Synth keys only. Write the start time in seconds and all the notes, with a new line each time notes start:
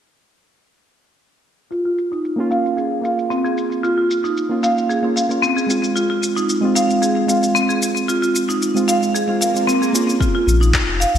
2.36 A#3 C#4 F4
3.01 A#3
3.05 F4
4.49 A#3 C#4 F4
5.02 A#3 C#4 F4
5.29 A#3 C#4 F4
5.67 G#3 C4 F4
6.61 G#3 C4 F4
7.27 G#3 C4
7.31 F4
8.74 G#3 C4 F4
9.27 G#3 C4 F4
9.54 G#3 C4 F4
9.93 A#3 C#4 F4